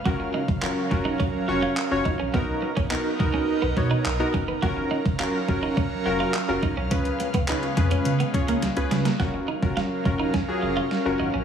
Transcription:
<<
  \new Staff \with { instrumentName = "Synth keys" } { \time 4/4 \key fis \major \tempo 4 = 105 <cis' eis' fis' ais'>8. r16 <cis' eis' fis' ais'>16 r16 <cis' eis' fis' ais'>8. r16 <cis' eis' fis' cis''>8 r16 <cis' eis' fis' cis''>8 r16 | <b dis' fis' ais'>8. r16 <b dis' fis' ais'>16 r16 <b dis' fis' ais'>8. r16 <b dis' fis' cis''>8 r16 <b dis' fis' ais'>8 r16 | <cis' eis' fis' ais'>8. r16 <cis' eis' fis' ais'>16 r16 <cis' eis' fis' ais'>8. r16 <cis' eis' fis' ais'>8 r16 <cis' eis' fis' ais'>8 r16 | <cis' eis' gis' b'>8. r16 <cis' eis' gis' b'>16 r16 <cis' eis' gis' b'>8. r16 <cis' eis' gis' cis''>8 r16 <cis' eis' gis' b'>8 r16 |
<cis' eis' fis' ais'>8 r16 <cis' eis' fis' ais'>8 r16 <cis' eis' fis' ais'>8 r16 <cis' eis' fis' gis'>8. r16 <cis' eis' fis' ais'>8 r16 | }
  \new Staff \with { instrumentName = "Clean electric guitar" } { \time 4/4 \key fis \major fis'16 r16 dis'16 r16 eis'16 r8 dis'16 cis'16 r8 eis'16 r8 dis'16 cis'16 | b16 r8 cis'16 dis'16 r8 cis'16 r16 b16 r16 dis'16 r8 cis'16 b16 | fis'16 r16 dis'16 r16 eis'16 r8 dis'16 cis'16 r8 eis'16 r8 dis'16 cis'16 | cis'16 r8 b16 dis'16 r8 cis'16 r16 b16 r16 ais16 r8 gis16 ais16 |
fis'16 r16 dis'16 r16 eis'16 r8 dis'16 cis'16 r8 eis'16 r8 dis'16 cis'16 | }
  \new Staff \with { instrumentName = "Analog synth pad" } { \time 4/4 \key fis \major <fis cis' ais' eis''>1 | <b dis' ais'>1 | <fis cis' ais' eis''>1 | <cis gis b>1 |
<fis cis' ais' eis''>1 | }
  \new Staff \with { instrumentName = "Sub bass" } { \clef bass \time 4/4 \key fis \major fis,,8 r16 fis,,8 r16 eis,,8 r8 eis,,8 r16 fis,,16 gis,,16 ais,,16 | b,,8 r16 b,,8 r16 cis,8 r16 b,,16 b,8 b,,8 eis,,8 | fis,,8 r16 fis,,8 r16 eis,,8 r8 eis,,8 r16 fis,,16 ais,,16 b,,16 | cis,8 r16 cis,8 r16 eis,8 cis8 cis,8 cis,16 cis,16 cis8 |
fis,,8 r16 fis,,8 r16 eis,,8 r8 eis,,8 r16 fis,,16 gis,,16 ais,,16 | }
  \new DrumStaff \with { instrumentName = "Drums" } \drummode { \time 4/4 bd8. bd16 hc8 bd8 bd4 hc8 bd8 | bd8. bd16 hc8 bd8 r8 bd8 hc8 bd8 | bd8. bd16 hc8 bd8 bd4 hc8 bd8 | <hh bd>16 hh16 hh16 <hh bd>16 <hc hh>16 hh16 <hh bd>16 hh16 hh16 hh16 <hh bd>16 hh16 <hh sn>16 hh16 <hh sn>16 <hh sn>16 |
<bd sn>8. bd16 sn8 bd8 <bd sn>4 sn4 | }
>>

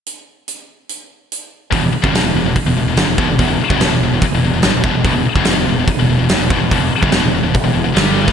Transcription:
<<
  \new Staff \with { instrumentName = "Distorted electric guitar" } { \clef bass \time 4/4 \key e \dorian \tempo 4 = 144 r1 | <e, b,>16 <e, b,>16 r16 <fis, cis>16 <e, b,>16 <e, b,>16 <e, b,>16 <e, b,>16 r16 <e, b,>16 <e, b,>16 <e, b,>16 <g, d>16 <e, b,>16 <e, b,>16 <e, b,>16 | <e, b,>16 <e, b,>16 r16 <fis, cis>16 <e, b,>16 <e, b,>16 <e, b,>16 <e, b,>16 r16 <e, b,>16 <e, b,>16 <e, b,>16 <g, d>16 <e, b,>16 <e, b,>16 <e, b,>16 | <e, b,>16 <e, b,>16 r16 <fis, cis>16 <e, b,>16 <e, b,>16 <e, b,>16 <e, b,>16 r16 <e, b,>16 <e, b,>16 <e, b,>16 <g, d>16 <e, b,>16 <e, b,>16 <e, b,>16 |
<e, b,>16 <e, b,>16 r16 <fis, cis>16 <e, b,>16 <e, b,>16 <e, b,>16 <e, b,>16 r16 <e, b,>16 <e, b,>16 <e, b,>16 <g, d g>8. <a, e>16 | }
  \new Staff \with { instrumentName = "Distorted electric guitar" } { \clef bass \time 4/4 \key e \dorian r1 | <e, b,>16 <e, b,>16 r16 <fis, cis>16 <e, b,>16 <e, b,>16 <e, b,>16 <e, b,>16 r16 <e, b,>16 <e, b,>16 <e, b,>16 <g, d>16 <e, b,>16 <e, b,>16 <e, b,>16 | <e, b,>16 <e, b,>16 r16 <fis, cis>16 <e, b,>16 <e, b,>16 <e, b,>16 <e, b,>16 r16 <e, b,>16 <e, b,>16 <e, b,>16 <g, d>16 <e, b,>16 <e, b,>16 <e, b,>16 | <e, b,>16 <e, b,>16 r16 <fis, cis>16 <e, b,>16 <e, b,>16 <e, b,>16 <e, b,>16 r16 <e, b,>16 <e, b,>16 <e, b,>16 <g, d>16 <e, b,>16 <e, b,>16 <e, b,>16 |
<e, b,>16 <e, b,>16 r16 <fis, cis>16 <e, b,>16 <e, b,>16 <e, b,>16 <e, b,>16 r16 <e, b,>16 <e, b,>16 <e, b,>16 <g, d g>8. <a, e>16 | }
  \new Staff \with { instrumentName = "Fingered electric bass" } { \clef bass \time 4/4 \key e \dorian r1 | e,,16 e,,16 r16 fis,,16 e,,16 e,,16 e,,16 e,,16 r16 e,,16 e,,16 e,,16 g,,16 e,,16 e,,16 e,,16 | e,,16 e,,16 r16 fis,,16 e,,16 e,,16 e,,16 e,,16 r16 e,,16 e,,16 e,,16 g,,16 e,,16 e,,16 e,,16 | e,,16 e,,16 r16 fis,,16 e,,16 e,,16 e,,16 e,,16 r16 e,,16 e,,16 e,,16 g,,16 e,,16 e,,16 e,,16 |
e,,16 e,,16 r16 fis,,16 e,,16 e,,16 e,,16 e,,16 r16 e,,16 e,,16 e,,16 g,,8. a,,16 | }
  \new DrumStaff \with { instrumentName = "Drums" } \drummode { \time 4/4 hh4 hh4 hh4 hh4 | <hho bd>8. bd16 <hho sn>4 <hho bd>4 <hho sn>8 bd8 | <hho bd>8. bd16 <hho sn>4 <hho bd>4 <hho sn>8 bd8 | <hho bd>8. bd16 <hho sn>4 <hho bd>4 <hho sn>8 bd8 |
<hho bd>8. bd16 <hho sn>4 <hho bd>4 <hho sn>8. <bd sn>16 | }
>>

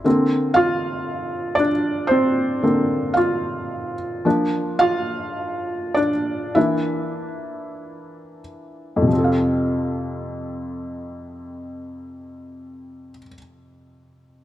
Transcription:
<<
  \new Staff \with { instrumentName = "Felt piano" } { \time 4/4 \key f \major \tempo 4 = 50 r8 <f' f''>4 <d' d''>8 <c' c''>4 <f' f''>8. r16 | r8 <f' f''>4 <d' d''>8 <e' e''>4. r8 | r1 | }
  \new Staff \with { instrumentName = "Felt piano" } { \time 4/4 \key f \major <d bes c'>4. r4 <d bes c'>8 r4 | <f bes d'>4. r8 <e bes d'>2 | <f, c f c' a' f''>1 | }
>>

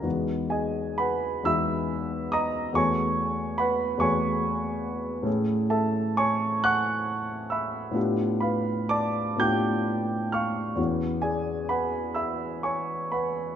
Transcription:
\new Staff \with { instrumentName = "Grand piano" } { \time 6/8 \key ges \lydian \tempo 4. = 44 << { r8 <gis' dis'' gis''>8 <b' fis'' b''>8 <e'' b'' e'''>4 <dis'' bes'' dis'''>8 | <des'' aes'' des'''>4 <ces'' ges'' ces'''>8 <des'' aes'' des'''>4. | \key a \major r8 <a' e'' a''>8 <cis'' gis'' cis'''>8 <fis'' cis''' fis'''>4 <e'' b'' e'''>8 | r8 <b' f'' b''>8 <d'' a'' d'''>8 <g'' d''' g'''>4 <f'' cis''' f'''>8 |
r8 <gis' d'' gis''>8 <b' fis'' b''>8 <e'' b'' e'''>8 <cis'' gis'' cis'''>8 <b' fis'' b''>8 | } \\ { <e, gis b dis' fis'>4. <e, gis b dis' fis'>4. | <fes, a ces' ges' aes'>4. <fes, a ces' ges' aes'>4. | <a, a cis' e' gis'>2. | <a, b d' f' g'>4. <a, b d' f' g'>4. |
<e, b cis' e' fis'>2. | } >> }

